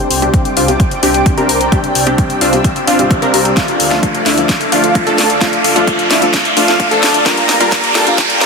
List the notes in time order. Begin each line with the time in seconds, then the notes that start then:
Already playing: C4 D4 G4 C5 D5 G5 D6, riser
0.11 C2, open hi-hat
0.22 C3 G3 C4 D4 G4 G5, closed hi-hat
0.34 kick, closed hi-hat
0.45 closed hi-hat
0.57 C2 C4 D4 F4 F5, open hi-hat
0.68 C3 G3 C4 D4 G4, closed hi-hat
0.80 kick, closed hi-hat
0.91 closed hi-hat
1.02 C2 C3 G3 C4 D4 G4 G5, open hi-hat
1.14 closed hi-hat
1.26 kick, closed hi-hat
1.37 C3 G3 C4 D4 G4 A#4 A#5, closed hi-hat
1.49 C2, open hi-hat
1.61 closed hi-hat
1.71 C3 G3 C4 D4 G4 G5 E6, kick, closed hi-hat
1.84 closed hi-hat
1.95 C2, open hi-hat
2.06 C3 G3 C4 D4 G4 G5, closed hi-hat
2.18 kick, closed hi-hat
2.30 closed hi-hat
2.41 C2 C4 D4 F4 F5, open hi-hat
2.52 C3 G3 C4 D4 G4, closed hi-hat
2.64 kick, closed hi-hat
2.76 closed hi-hat
2.87 G1 C4 D4 F4 F5, open hi-hat
2.98 C3 G3 C4 D4 G4, closed hi-hat
3.11 kick, closed hi-hat
3.22 C4 D4 A#4 A#5, closed hi-hat
3.33 C2 G3 C4 D4 G4, open hi-hat
3.45 closed hi-hat
3.56 F3 A3 D4 F4 A4 F5 D6, kick, snare, closed hi-hat
3.68 closed hi-hat
3.80 D2, open hi-hat
3.91 F3 A3 D4 F4 F5, snare, closed hi-hat
4.03 kick, closed hi-hat
4.15 closed hi-hat
4.26 D2 A3 D4 E4 E5, snare, open hi-hat
4.37 F3 A3 D4 F4, closed hi-hat
4.49 kick, snare, closed hi-hat
4.61 closed hi-hat
4.71 D2 F3 A3 D4 F4 F5, open hi-hat
4.84 closed hi-hat
4.95 kick, closed hi-hat
5.06 F3 A3 D4 F4 A4 A5, closed hi-hat
5.18 D2, snare, open hi-hat
5.30 closed hi-hat
5.41 F3 A3 D4 F4 F5, kick, snare, closed hi-hat
5.53 closed hi-hat
5.64 D2, open hi-hat
5.75 F3 A3 D4 F4 F5, closed hi-hat
5.87 kick, closed hi-hat
5.99 closed hi-hat
6.10 D2 A3 D4 E4 E5, snare, open hi-hat
6.22 F3 A3 D4 F4, closed hi-hat
6.34 kick, snare, closed hi-hat
6.45 closed hi-hat
6.56 D2 F3 A3 D4 F4 F5, open hi-hat
6.68 snare, closed hi-hat
6.80 kick, closed hi-hat
6.91 F3 A3 D4 F4 A4 A5, closed hi-hat
7.03 D2, snare, open hi-hat
7.14 closed hi-hat
7.25 G2 G3 A#3 D4 F4 A#4 F5 G5 A#5, kick, snare, closed hi-hat
7.37 closed hi-hat
7.49 G1, snare, open hi-hat
7.60 G2 G3 A#3 D4 F4 A#4 A#5, closed hi-hat
7.72 kick, snare, closed hi-hat
7.84 closed hi-hat
7.95 G1 G3 A#3 D4 F4 A4 A5, snare, open hi-hat
8.06 G2 G3 A#3 D4 F4, closed hi-hat
8.18 kick, snare, closed hi-hat
8.30 closed hi-hat
8.41 G1 G2 G3 A#3 D4 F4 A#4 A#5, snare, open hi-hat